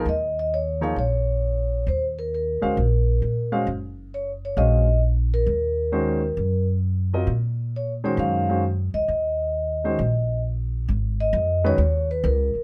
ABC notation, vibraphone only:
X:1
M:4/4
L:1/8
Q:"Swing" 1/4=133
K:Ebdor
V:1 name="Vibraphone"
e e d f d4 | c B B4- B z | z2 d d e2 z B- | B4- B z3 |
z2 d d f2 z e- | e6 z2 | [K:G#dor] z d2 c2 B A2 |]